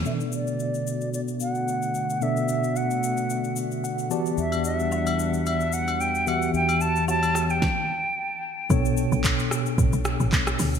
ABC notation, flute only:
X:1
M:4/4
L:1/16
Q:"Swing 16ths" 1/4=111
K:Bm
V:1 name="Flute"
e2 d6 d2 f6 | e4 f6 z6 | e2 e6 e2 f2 g2 f2 | g2 a2 a3 g6- g z2 |
z16 |]